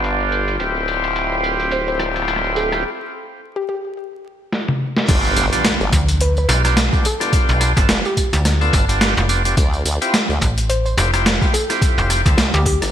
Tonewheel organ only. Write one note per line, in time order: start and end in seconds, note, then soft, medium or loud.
0.00 0.57 B3 medium
0.00 0.57 D4 medium
0.00 0.57 F4 medium
0.00 0.57 G4 medium
0.59 2.84 C4 medium
0.59 2.84 E4 medium
0.59 2.84 F4 medium
0.59 2.84 G4 medium
5.08 5.46 B3 loud
5.08 5.46 D4 medium
5.08 5.46 F4 medium
5.08 5.46 G4 loud
5.52 5.67 B3 medium
5.52 5.67 D4 medium
5.52 5.67 F4 medium
5.52 5.67 G4 loud
6.48 6.62 B3 medium
6.48 6.62 D4 medium
6.48 6.62 F4 medium
6.48 6.62 G4 medium
6.64 6.79 B3 medium
6.64 6.79 D4 medium
6.64 6.79 F4 medium
6.64 6.79 G4 loud
6.92 7.07 B3 medium
6.92 7.07 D4 medium
6.92 7.07 F4 medium
6.92 7.07 G4 medium
7.20 7.73 B3 medium
7.20 7.73 D4 medium
7.20 7.73 F4 medium
7.20 7.73 G4 loud
7.76 7.91 B3 medium
7.76 7.91 D4 medium
7.76 7.91 F4 medium
7.76 7.91 A4 loud
8.61 8.85 B3 medium
8.61 8.85 D4 medium
8.61 8.85 F4 medium
8.61 8.85 A4 loud
8.88 9.14 B3 medium
8.88 9.14 D4 medium
8.88 9.14 F4 medium
8.88 9.14 G4 medium
9.29 9.43 B3 loud
9.29 9.43 D4 medium
9.29 9.43 F4 medium
9.29 9.43 G4 loud
9.45 9.56 B3 medium
9.45 9.56 D4 medium
9.45 9.56 F4 medium
9.45 9.56 G4 loud
10.01 10.16 C4 medium
10.01 10.16 E4 medium
10.01 10.16 F4 medium
10.01 10.16 G4 loud
10.97 11.11 C4 medium
10.97 11.11 E4 medium
10.97 11.11 F4 medium
10.97 11.11 G4 medium
11.13 11.28 C4 medium
11.13 11.28 E4 medium
11.13 11.28 F4 medium
11.13 11.28 G4 loud
11.42 11.56 C4 medium
11.42 11.56 E4 medium
11.42 11.56 F4 medium
11.42 11.56 G4 medium
11.70 12.22 C4 medium
11.70 12.22 E4 medium
11.70 12.22 F4 medium
11.70 12.22 G4 loud
12.26 12.40 C4 medium
12.26 12.40 E4 medium
12.26 12.40 F4 medium
12.26 12.40 A4 medium